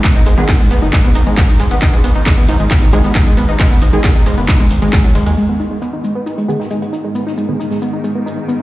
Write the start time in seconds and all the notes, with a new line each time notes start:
Already playing: G#2 D#3
0.04 B3, kick, clap, closed hi-hat, ride, shaker
0.16 G#1 D#4, snare, closed hi-hat
0.26 G#1 G#3, open hi-hat, shaker
0.38 G#1 D#3 G#3 B3 G#4, closed hi-hat
0.48 D#4, kick, snare, clap, closed hi-hat, ride, shaker
0.60 G#3, snare, closed hi-hat
0.70 G#1 B3, open hi-hat, shaker
0.82 F#1 D#4, closed hi-hat
0.92 G#3, kick, clap, closed hi-hat, ride, shaker
1.04 G#1 B3, closed hi-hat
1.15 G#1 D#4, open hi-hat, shaker
1.27 G#1 G#3, closed hi-hat
1.37 B3, kick, snare, clap, closed hi-hat, ride, shaker
1.49 D#4, closed hi-hat
1.60 G#1 G#3, open hi-hat, shaker
1.71 G#1 B3, open hi-hat
1.82 D#4, kick, clap, closed hi-hat, ride, shaker
1.93 G#1 G#3, closed hi-hat
2.04 G#1 B3, open hi-hat, shaker
2.15 G#1 D#4, closed hi-hat
2.26 G#3, kick, snare, clap, closed hi-hat, ride, shaker
2.38 B3, closed hi-hat
2.48 G#1 D#4, open hi-hat, shaker
2.60 G#1 G#3, closed hi-hat
2.71 B3, kick, clap, closed hi-hat, ride, shaker
2.82 G#1 D#4, closed hi-hat
2.93 G#1 D#3 G#3 G#4, open hi-hat, shaker
3.04 G#1 B3, snare, closed hi-hat
3.15 D#4, kick, snare, clap, closed hi-hat, ride, shaker
3.26 G#3, closed hi-hat
3.37 G#1 B3, open hi-hat, shaker
3.49 G#1 D#4, closed hi-hat
3.60 G#3, kick, clap, closed hi-hat, ride, shaker
3.71 G#1 B3, snare, closed hi-hat
3.82 G#1 D#4, open hi-hat, shaker
3.93 G#1 D#3 G#3 G#4, closed hi-hat
4.04 B3, kick, snare, clap, closed hi-hat, ride, shaker
4.15 D#4, snare, closed hi-hat
4.26 G#1 G#3, open hi-hat, shaker
4.38 F#1 B3, closed hi-hat
4.48 D#4, kick, clap, closed hi-hat, ride, shaker
4.60 G#1 G#3, closed hi-hat
4.71 G#1, open hi-hat, shaker
4.82 G#1 G#3, closed hi-hat
4.92 G#3, kick, snare, clap, closed hi-hat, ride, shaker
5.04 F#3, closed hi-hat
5.15 G#1 G#3, open hi-hat, shaker
5.26 D#2 G#3, closed hi-hat, open hi-hat
5.37 G#2 D#3 G#3, shaker
5.49 B3
5.60 D#4, shaker
5.71 G#3
5.82 B3, shaker
5.93 D#4
6.04 G#3, shaker
6.15 B3
6.26 D#4, shaker
6.38 G#3, closed hi-hat
6.48 D#3 G#3 B3 G#4, shaker
6.60 D#4, snare
6.70 G#3, shaker
6.82 B3, closed hi-hat
6.93 D#4, shaker
7.04 G#3
7.15 B3, shaker
7.27 D#4, snare
7.37 G#3, shaker
7.49 D#3 G#3 B3 G#4
7.60 D#4, shaker
7.70 G#3, snare
7.82 B3, shaker
7.93 D#4
8.04 G#3, shaker
8.15 B3
8.26 D#4, shaker
8.38 G#3
8.48 B3, shaker